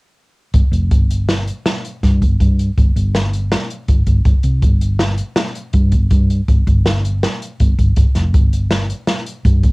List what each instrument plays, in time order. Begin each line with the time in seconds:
0.54 fingered electric bass G1, kick, closed hi-hat
0.72 fingered electric bass F1, closed hi-hat
0.91 fingered electric bass G1, kick, closed hi-hat
1.10 closed hi-hat
1.29 snare, closed hi-hat
1.47 closed hi-hat
1.66 snare, closed hi-hat
1.84 closed hi-hat
2.03 fingered electric bass G2, kick, snare, closed hi-hat
2.22 fingered electric bass G1, kick, closed hi-hat
2.40 fingered electric bass G2, kick, closed hi-hat
2.59 closed hi-hat
2.77 fingered electric bass G1, kick, closed hi-hat
2.96 fingered electric bass G1, closed hi-hat
3.15 snare, closed hi-hat
3.33 closed hi-hat
3.52 snare, closed hi-hat
3.70 closed hi-hat
3.88 fingered electric bass G1, kick, closed hi-hat
4.06 fingered electric bass G1, kick, closed hi-hat
4.25 fingered electric bass G1, kick, closed hi-hat
4.43 fingered electric bass C2, closed hi-hat
4.62 fingered electric bass G1, kick, closed hi-hat
4.81 closed hi-hat
4.99 snare, closed hi-hat
5.18 closed hi-hat
5.36 snare, closed hi-hat
5.55 closed hi-hat
5.73 fingered electric bass G2, kick, closed hi-hat
5.92 fingered electric bass G1, kick, closed hi-hat
6.11 fingered electric bass G2, kick, closed hi-hat
6.30 closed hi-hat
6.48 fingered electric bass G1, kick, closed hi-hat
6.67 fingered electric bass G1, kick, closed hi-hat
6.86 snare, closed hi-hat
7.05 closed hi-hat
7.23 snare, closed hi-hat
7.42 closed hi-hat
7.60 fingered electric bass G1, kick, closed hi-hat
7.79 fingered electric bass G1, kick, closed hi-hat
7.96 fingered electric bass G1, kick, closed hi-hat
8.15 fingered electric bass F1, snare, closed hi-hat
8.34 fingered electric bass G1, kick, closed hi-hat
8.53 closed hi-hat
8.71 snare, closed hi-hat
8.90 closed hi-hat
9.07 snare, closed hi-hat
9.26 closed hi-hat
9.45 fingered electric bass G2, kick, closed hi-hat
9.63 fingered electric bass G1, kick, closed hi-hat